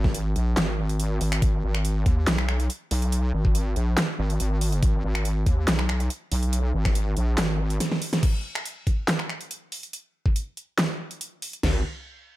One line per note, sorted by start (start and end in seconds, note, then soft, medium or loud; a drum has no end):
0.00 0.34 G#1 loud
0.04 kick medium
0.04 snare soft
0.14 closed hi-hat medium
0.36 0.55 A#1 loud
0.36 closed hi-hat soft
0.57 1.19 G#1 loud
0.57 snare loud
0.57 clap medium
0.57 closed hi-hat medium
0.89 closed hi-hat soft
1.00 closed hi-hat medium
1.21 1.41 G#1 medium
1.21 open hi-hat medium
1.32 finger snap medium
1.32 closed hi-hat medium
1.42 1.62 G#1 loud
1.42 kick loud
1.42 closed hi-hat medium
1.64 2.04 G#1 loud
1.75 finger snap medium
1.85 closed hi-hat medium
2.06 2.26 D#2 loud
2.06 kick medium
2.06 closed hi-hat medium
2.27 2.68 B1 loud
2.27 snare loud
2.27 clap medium
2.27 closed hi-hat medium
2.38 finger snap medium
2.49 finger snap medium
2.60 closed hi-hat medium
2.70 closed hi-hat medium
2.91 3.32 B1 loud
2.91 open hi-hat loud
3.02 closed hi-hat medium
3.12 closed hi-hat medium
3.34 3.75 G#1 loud
3.45 kick medium
3.55 closed hi-hat medium
3.76 3.96 A#1 loud
3.76 closed hi-hat medium
3.97 snare loud
3.97 clap medium
3.97 closed hi-hat medium
4.19 4.38 G#1 loud
4.30 closed hi-hat medium
4.40 4.81 G#1 loud
4.40 closed hi-hat medium
4.61 open hi-hat loud
4.72 closed hi-hat medium
4.83 5.02 G#1 loud
4.83 kick loud
4.83 closed hi-hat medium
5.04 5.45 G#1 loud
5.15 finger snap medium
5.25 closed hi-hat medium
5.46 5.66 D#2 loud
5.46 kick medium
5.46 closed hi-hat medium
5.68 6.09 B1 loud
5.68 snare loud
5.68 clap medium
5.68 closed hi-hat medium
5.79 finger snap medium
5.89 finger snap medium
6.00 closed hi-hat medium
6.10 closed hi-hat medium
6.32 6.72 B1 loud
6.32 open hi-hat loud
6.43 closed hi-hat medium
6.53 closed hi-hat medium
6.74 7.15 G#1 loud
6.85 finger snap medium
6.85 kick medium
6.85 snare soft
6.95 closed hi-hat medium
7.17 7.36 A#1 loud
7.17 closed hi-hat medium
7.38 7.79 G#1 loud
7.38 snare loud
7.38 clap loud
7.38 closed hi-hat medium
7.70 closed hi-hat medium
7.80 snare medium
7.80 closed hi-hat medium
7.92 snare medium
8.02 open hi-hat loud
8.13 snare medium
8.13 closed hi-hat medium
8.23 kick loud
8.23 closed hi-hat medium
8.23 crash medium
8.55 finger snap medium
8.66 closed hi-hat medium
8.87 kick medium
8.87 closed hi-hat medium
9.08 snare loud
9.08 clap medium
9.08 closed hi-hat medium
9.19 finger snap medium
9.29 finger snap soft
9.41 closed hi-hat medium
9.51 closed hi-hat medium
9.72 open hi-hat medium
9.83 closed hi-hat medium
9.93 closed hi-hat medium
10.26 kick medium
10.36 closed hi-hat medium
10.57 closed hi-hat medium
10.78 snare loud
10.78 clap medium
10.78 closed hi-hat medium
11.11 closed hi-hat medium
11.21 closed hi-hat medium
11.42 open hi-hat medium
11.53 closed hi-hat medium
11.63 11.83 G#1 loud
11.63 snare loud
11.63 floor tom loud
11.63 crash medium